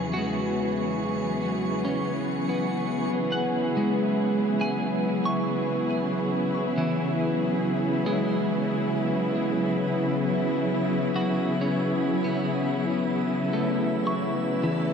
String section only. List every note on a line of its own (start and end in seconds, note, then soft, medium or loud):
0.00 3.14 C#3 medium
0.00 3.16 E3 medium
0.00 3.15 F#3 medium
0.00 14.93 B3 medium
0.00 13.43 G#4 medium
3.15 14.93 C#3 medium
3.29 14.93 F#3 medium
3.41 14.93 E4 medium
13.44 14.93 E2 medium
14.62 14.93 A5 medium